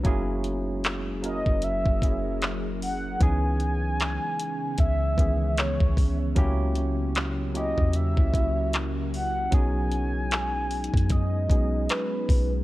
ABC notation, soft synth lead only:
X:1
M:4/4
L:1/16
Q:"Swing 16ths" 1/4=76
K:F#mix
V:1 name="Soft synth lead"
z6 d2 e4 z2 f2 | g8 e4 c3 z | z6 d2 e4 z2 f2 | g8 d4 B3 z |]